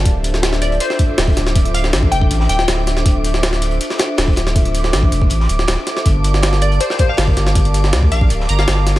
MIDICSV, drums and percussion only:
0, 0, Header, 1, 2, 480
1, 0, Start_track
1, 0, Tempo, 375000
1, 72, Time_signature, 4, 2, 24, 8
1, 11507, End_track
2, 0, Start_track
2, 0, Title_t, "Drums"
2, 67, Note_on_c, 9, 42, 85
2, 70, Note_off_c, 9, 42, 0
2, 70, Note_on_c, 9, 36, 115
2, 70, Note_on_c, 9, 42, 92
2, 198, Note_off_c, 9, 36, 0
2, 198, Note_off_c, 9, 42, 0
2, 311, Note_on_c, 9, 42, 69
2, 317, Note_off_c, 9, 42, 0
2, 317, Note_on_c, 9, 42, 75
2, 435, Note_on_c, 9, 38, 54
2, 445, Note_off_c, 9, 42, 0
2, 549, Note_off_c, 9, 38, 0
2, 549, Note_on_c, 9, 38, 117
2, 552, Note_off_c, 9, 38, 0
2, 552, Note_on_c, 9, 38, 122
2, 552, Note_on_c, 9, 42, 90
2, 558, Note_off_c, 9, 42, 0
2, 558, Note_on_c, 9, 42, 82
2, 670, Note_off_c, 9, 42, 0
2, 670, Note_on_c, 9, 42, 41
2, 674, Note_off_c, 9, 38, 0
2, 674, Note_on_c, 9, 38, 53
2, 790, Note_off_c, 9, 42, 0
2, 790, Note_on_c, 9, 42, 69
2, 794, Note_off_c, 9, 42, 0
2, 794, Note_on_c, 9, 42, 70
2, 802, Note_off_c, 9, 38, 0
2, 922, Note_off_c, 9, 42, 0
2, 922, Note_on_c, 9, 42, 45
2, 1029, Note_off_c, 9, 42, 0
2, 1029, Note_on_c, 9, 42, 88
2, 1031, Note_off_c, 9, 42, 0
2, 1031, Note_on_c, 9, 42, 89
2, 1151, Note_on_c, 9, 38, 45
2, 1155, Note_off_c, 9, 38, 0
2, 1155, Note_on_c, 9, 38, 43
2, 1159, Note_off_c, 9, 42, 0
2, 1269, Note_on_c, 9, 42, 71
2, 1270, Note_on_c, 9, 36, 98
2, 1278, Note_off_c, 9, 42, 0
2, 1278, Note_on_c, 9, 42, 63
2, 1283, Note_off_c, 9, 38, 0
2, 1398, Note_off_c, 9, 36, 0
2, 1406, Note_off_c, 9, 42, 0
2, 1510, Note_on_c, 9, 38, 119
2, 1510, Note_on_c, 9, 42, 92
2, 1518, Note_on_c, 9, 46, 93
2, 1519, Note_off_c, 9, 38, 0
2, 1519, Note_on_c, 9, 38, 127
2, 1634, Note_on_c, 9, 36, 97
2, 1638, Note_off_c, 9, 42, 0
2, 1646, Note_off_c, 9, 46, 0
2, 1647, Note_off_c, 9, 38, 0
2, 1752, Note_on_c, 9, 38, 50
2, 1752, Note_on_c, 9, 42, 69
2, 1753, Note_off_c, 9, 42, 0
2, 1753, Note_on_c, 9, 42, 70
2, 1762, Note_off_c, 9, 36, 0
2, 1876, Note_off_c, 9, 38, 0
2, 1876, Note_on_c, 9, 38, 56
2, 1881, Note_off_c, 9, 42, 0
2, 1991, Note_on_c, 9, 42, 92
2, 1992, Note_on_c, 9, 36, 120
2, 1995, Note_off_c, 9, 42, 0
2, 1995, Note_on_c, 9, 42, 98
2, 2004, Note_off_c, 9, 38, 0
2, 2118, Note_off_c, 9, 42, 0
2, 2118, Note_on_c, 9, 42, 46
2, 2120, Note_off_c, 9, 36, 0
2, 2234, Note_off_c, 9, 42, 0
2, 2234, Note_on_c, 9, 42, 70
2, 2238, Note_off_c, 9, 42, 0
2, 2238, Note_on_c, 9, 42, 68
2, 2352, Note_on_c, 9, 38, 40
2, 2357, Note_off_c, 9, 38, 0
2, 2357, Note_on_c, 9, 38, 47
2, 2366, Note_off_c, 9, 42, 0
2, 2472, Note_off_c, 9, 38, 0
2, 2472, Note_on_c, 9, 38, 117
2, 2472, Note_on_c, 9, 42, 89
2, 2481, Note_off_c, 9, 42, 0
2, 2481, Note_on_c, 9, 42, 90
2, 2482, Note_off_c, 9, 38, 0
2, 2482, Note_on_c, 9, 38, 102
2, 2595, Note_on_c, 9, 36, 101
2, 2609, Note_off_c, 9, 42, 0
2, 2610, Note_off_c, 9, 38, 0
2, 2712, Note_on_c, 9, 42, 72
2, 2713, Note_off_c, 9, 42, 0
2, 2713, Note_on_c, 9, 42, 66
2, 2723, Note_off_c, 9, 36, 0
2, 2835, Note_on_c, 9, 36, 99
2, 2841, Note_off_c, 9, 42, 0
2, 2953, Note_on_c, 9, 42, 92
2, 2956, Note_off_c, 9, 42, 0
2, 2956, Note_on_c, 9, 42, 84
2, 2963, Note_off_c, 9, 36, 0
2, 3071, Note_on_c, 9, 38, 53
2, 3084, Note_off_c, 9, 42, 0
2, 3193, Note_on_c, 9, 42, 71
2, 3199, Note_off_c, 9, 38, 0
2, 3204, Note_off_c, 9, 42, 0
2, 3204, Note_on_c, 9, 42, 74
2, 3314, Note_on_c, 9, 38, 56
2, 3332, Note_off_c, 9, 42, 0
2, 3428, Note_on_c, 9, 42, 90
2, 3432, Note_off_c, 9, 38, 0
2, 3432, Note_off_c, 9, 42, 0
2, 3432, Note_on_c, 9, 38, 122
2, 3432, Note_on_c, 9, 42, 90
2, 3435, Note_off_c, 9, 38, 0
2, 3435, Note_on_c, 9, 38, 112
2, 3560, Note_off_c, 9, 42, 0
2, 3563, Note_off_c, 9, 38, 0
2, 3674, Note_on_c, 9, 42, 69
2, 3675, Note_off_c, 9, 42, 0
2, 3675, Note_on_c, 9, 38, 49
2, 3675, Note_on_c, 9, 42, 72
2, 3797, Note_off_c, 9, 38, 0
2, 3797, Note_on_c, 9, 38, 50
2, 3803, Note_off_c, 9, 42, 0
2, 3912, Note_on_c, 9, 36, 112
2, 3912, Note_on_c, 9, 42, 91
2, 3922, Note_off_c, 9, 42, 0
2, 3922, Note_on_c, 9, 42, 98
2, 3925, Note_off_c, 9, 38, 0
2, 4040, Note_off_c, 9, 36, 0
2, 4050, Note_off_c, 9, 42, 0
2, 4153, Note_on_c, 9, 42, 67
2, 4170, Note_off_c, 9, 42, 0
2, 4170, Note_on_c, 9, 42, 59
2, 4277, Note_on_c, 9, 38, 54
2, 4298, Note_off_c, 9, 42, 0
2, 4390, Note_off_c, 9, 38, 0
2, 4390, Note_on_c, 9, 38, 109
2, 4390, Note_on_c, 9, 42, 82
2, 4394, Note_off_c, 9, 38, 0
2, 4394, Note_off_c, 9, 42, 0
2, 4394, Note_on_c, 9, 38, 123
2, 4394, Note_on_c, 9, 42, 92
2, 4517, Note_off_c, 9, 38, 0
2, 4517, Note_on_c, 9, 38, 57
2, 4521, Note_off_c, 9, 42, 0
2, 4521, Note_on_c, 9, 42, 41
2, 4633, Note_off_c, 9, 42, 0
2, 4633, Note_on_c, 9, 42, 72
2, 4635, Note_off_c, 9, 42, 0
2, 4635, Note_on_c, 9, 42, 73
2, 4645, Note_off_c, 9, 38, 0
2, 4748, Note_off_c, 9, 42, 0
2, 4748, Note_on_c, 9, 42, 45
2, 4873, Note_off_c, 9, 42, 0
2, 4873, Note_on_c, 9, 42, 84
2, 4874, Note_off_c, 9, 42, 0
2, 4874, Note_on_c, 9, 42, 92
2, 4997, Note_on_c, 9, 38, 43
2, 5002, Note_off_c, 9, 42, 0
2, 5100, Note_on_c, 9, 42, 77
2, 5113, Note_off_c, 9, 38, 0
2, 5113, Note_off_c, 9, 42, 0
2, 5113, Note_on_c, 9, 38, 114
2, 5113, Note_on_c, 9, 42, 79
2, 5241, Note_off_c, 9, 38, 0
2, 5241, Note_off_c, 9, 42, 0
2, 5346, Note_on_c, 9, 46, 88
2, 5350, Note_on_c, 9, 38, 113
2, 5354, Note_off_c, 9, 38, 0
2, 5354, Note_on_c, 9, 38, 120
2, 5354, Note_on_c, 9, 42, 88
2, 5474, Note_off_c, 9, 46, 0
2, 5475, Note_on_c, 9, 36, 91
2, 5482, Note_off_c, 9, 38, 0
2, 5482, Note_off_c, 9, 42, 0
2, 5584, Note_on_c, 9, 42, 70
2, 5595, Note_off_c, 9, 42, 0
2, 5595, Note_on_c, 9, 38, 50
2, 5595, Note_on_c, 9, 42, 72
2, 5603, Note_off_c, 9, 36, 0
2, 5718, Note_off_c, 9, 38, 0
2, 5718, Note_on_c, 9, 38, 56
2, 5723, Note_off_c, 9, 42, 0
2, 5832, Note_on_c, 9, 36, 112
2, 5834, Note_on_c, 9, 42, 97
2, 5835, Note_off_c, 9, 42, 0
2, 5835, Note_on_c, 9, 42, 84
2, 5846, Note_off_c, 9, 38, 0
2, 5958, Note_off_c, 9, 42, 0
2, 5958, Note_on_c, 9, 42, 45
2, 5960, Note_off_c, 9, 36, 0
2, 6075, Note_off_c, 9, 42, 0
2, 6075, Note_on_c, 9, 42, 67
2, 6082, Note_off_c, 9, 42, 0
2, 6082, Note_on_c, 9, 42, 65
2, 6190, Note_on_c, 9, 38, 38
2, 6198, Note_off_c, 9, 38, 0
2, 6198, Note_on_c, 9, 38, 47
2, 6210, Note_off_c, 9, 42, 0
2, 6312, Note_off_c, 9, 38, 0
2, 6312, Note_on_c, 9, 38, 116
2, 6313, Note_on_c, 9, 42, 87
2, 6314, Note_off_c, 9, 38, 0
2, 6314, Note_off_c, 9, 42, 0
2, 6314, Note_on_c, 9, 38, 117
2, 6314, Note_on_c, 9, 42, 89
2, 6436, Note_on_c, 9, 36, 98
2, 6442, Note_off_c, 9, 38, 0
2, 6442, Note_off_c, 9, 42, 0
2, 6555, Note_on_c, 9, 42, 74
2, 6556, Note_off_c, 9, 42, 0
2, 6556, Note_on_c, 9, 42, 67
2, 6564, Note_off_c, 9, 36, 0
2, 6676, Note_on_c, 9, 36, 100
2, 6684, Note_off_c, 9, 42, 0
2, 6783, Note_on_c, 9, 42, 92
2, 6794, Note_off_c, 9, 42, 0
2, 6794, Note_on_c, 9, 42, 94
2, 6804, Note_off_c, 9, 36, 0
2, 6916, Note_on_c, 9, 38, 48
2, 6922, Note_off_c, 9, 42, 0
2, 7027, Note_on_c, 9, 42, 68
2, 7033, Note_off_c, 9, 42, 0
2, 7033, Note_on_c, 9, 42, 71
2, 7044, Note_off_c, 9, 38, 0
2, 7157, Note_on_c, 9, 38, 52
2, 7161, Note_off_c, 9, 42, 0
2, 7265, Note_on_c, 9, 42, 99
2, 7268, Note_off_c, 9, 38, 0
2, 7268, Note_on_c, 9, 38, 116
2, 7273, Note_off_c, 9, 38, 0
2, 7273, Note_off_c, 9, 42, 0
2, 7273, Note_on_c, 9, 38, 117
2, 7273, Note_on_c, 9, 42, 91
2, 7401, Note_off_c, 9, 38, 0
2, 7401, Note_off_c, 9, 42, 0
2, 7511, Note_on_c, 9, 38, 45
2, 7511, Note_on_c, 9, 42, 70
2, 7513, Note_off_c, 9, 42, 0
2, 7513, Note_on_c, 9, 42, 61
2, 7636, Note_off_c, 9, 38, 0
2, 7636, Note_on_c, 9, 38, 49
2, 7641, Note_off_c, 9, 42, 0
2, 7752, Note_on_c, 9, 36, 111
2, 7752, Note_on_c, 9, 42, 91
2, 7760, Note_off_c, 9, 42, 0
2, 7760, Note_on_c, 9, 42, 95
2, 7764, Note_off_c, 9, 38, 0
2, 7880, Note_off_c, 9, 36, 0
2, 7888, Note_off_c, 9, 42, 0
2, 7992, Note_on_c, 9, 42, 69
2, 7993, Note_off_c, 9, 42, 0
2, 7993, Note_on_c, 9, 42, 62
2, 8118, Note_on_c, 9, 38, 56
2, 8121, Note_off_c, 9, 42, 0
2, 8225, Note_off_c, 9, 38, 0
2, 8225, Note_on_c, 9, 38, 117
2, 8226, Note_on_c, 9, 42, 91
2, 8234, Note_off_c, 9, 38, 0
2, 8234, Note_off_c, 9, 42, 0
2, 8234, Note_on_c, 9, 38, 123
2, 8234, Note_on_c, 9, 42, 95
2, 8357, Note_off_c, 9, 38, 0
2, 8357, Note_on_c, 9, 38, 54
2, 8360, Note_off_c, 9, 42, 0
2, 8360, Note_on_c, 9, 42, 41
2, 8465, Note_off_c, 9, 42, 0
2, 8465, Note_on_c, 9, 42, 69
2, 8472, Note_off_c, 9, 42, 0
2, 8472, Note_on_c, 9, 42, 69
2, 8485, Note_off_c, 9, 38, 0
2, 8599, Note_off_c, 9, 42, 0
2, 8599, Note_on_c, 9, 42, 45
2, 8708, Note_off_c, 9, 42, 0
2, 8708, Note_on_c, 9, 42, 86
2, 8712, Note_off_c, 9, 42, 0
2, 8712, Note_on_c, 9, 42, 94
2, 8835, Note_on_c, 9, 38, 42
2, 8840, Note_off_c, 9, 42, 0
2, 8942, Note_on_c, 9, 42, 67
2, 8951, Note_off_c, 9, 42, 0
2, 8951, Note_on_c, 9, 36, 101
2, 8951, Note_on_c, 9, 42, 69
2, 8963, Note_off_c, 9, 38, 0
2, 9079, Note_off_c, 9, 36, 0
2, 9079, Note_off_c, 9, 42, 0
2, 9182, Note_on_c, 9, 38, 121
2, 9186, Note_on_c, 9, 46, 78
2, 9192, Note_off_c, 9, 38, 0
2, 9192, Note_on_c, 9, 38, 121
2, 9192, Note_on_c, 9, 42, 91
2, 9314, Note_off_c, 9, 46, 0
2, 9314, Note_on_c, 9, 36, 99
2, 9320, Note_off_c, 9, 38, 0
2, 9320, Note_off_c, 9, 42, 0
2, 9430, Note_on_c, 9, 42, 60
2, 9432, Note_off_c, 9, 42, 0
2, 9432, Note_on_c, 9, 38, 49
2, 9432, Note_on_c, 9, 42, 73
2, 9442, Note_off_c, 9, 36, 0
2, 9556, Note_off_c, 9, 38, 0
2, 9556, Note_on_c, 9, 38, 56
2, 9560, Note_off_c, 9, 42, 0
2, 9668, Note_on_c, 9, 42, 86
2, 9669, Note_off_c, 9, 42, 0
2, 9669, Note_on_c, 9, 42, 92
2, 9670, Note_on_c, 9, 36, 109
2, 9684, Note_off_c, 9, 38, 0
2, 9795, Note_off_c, 9, 42, 0
2, 9795, Note_on_c, 9, 42, 46
2, 9798, Note_off_c, 9, 36, 0
2, 9909, Note_off_c, 9, 42, 0
2, 9909, Note_on_c, 9, 42, 67
2, 9911, Note_off_c, 9, 42, 0
2, 9911, Note_on_c, 9, 42, 70
2, 10027, Note_on_c, 9, 38, 41
2, 10035, Note_off_c, 9, 38, 0
2, 10035, Note_on_c, 9, 38, 48
2, 10039, Note_off_c, 9, 42, 0
2, 10147, Note_on_c, 9, 42, 83
2, 10150, Note_off_c, 9, 38, 0
2, 10150, Note_off_c, 9, 42, 0
2, 10150, Note_on_c, 9, 38, 119
2, 10150, Note_on_c, 9, 42, 96
2, 10152, Note_off_c, 9, 38, 0
2, 10152, Note_on_c, 9, 38, 112
2, 10273, Note_on_c, 9, 36, 99
2, 10278, Note_off_c, 9, 42, 0
2, 10280, Note_off_c, 9, 38, 0
2, 10390, Note_on_c, 9, 42, 75
2, 10394, Note_off_c, 9, 42, 0
2, 10394, Note_on_c, 9, 42, 70
2, 10401, Note_off_c, 9, 36, 0
2, 10513, Note_on_c, 9, 36, 102
2, 10522, Note_off_c, 9, 42, 0
2, 10625, Note_on_c, 9, 42, 85
2, 10628, Note_off_c, 9, 42, 0
2, 10628, Note_on_c, 9, 42, 84
2, 10641, Note_off_c, 9, 36, 0
2, 10756, Note_off_c, 9, 42, 0
2, 10756, Note_on_c, 9, 38, 49
2, 10867, Note_on_c, 9, 42, 73
2, 10874, Note_off_c, 9, 42, 0
2, 10874, Note_on_c, 9, 42, 65
2, 10884, Note_off_c, 9, 38, 0
2, 10993, Note_on_c, 9, 38, 55
2, 11002, Note_off_c, 9, 42, 0
2, 11104, Note_off_c, 9, 38, 0
2, 11104, Note_on_c, 9, 38, 118
2, 11107, Note_off_c, 9, 38, 0
2, 11107, Note_on_c, 9, 38, 123
2, 11107, Note_on_c, 9, 42, 90
2, 11235, Note_off_c, 9, 38, 0
2, 11235, Note_off_c, 9, 42, 0
2, 11349, Note_on_c, 9, 38, 47
2, 11349, Note_on_c, 9, 42, 72
2, 11350, Note_off_c, 9, 42, 0
2, 11350, Note_on_c, 9, 42, 69
2, 11477, Note_off_c, 9, 38, 0
2, 11478, Note_off_c, 9, 42, 0
2, 11507, End_track
0, 0, End_of_file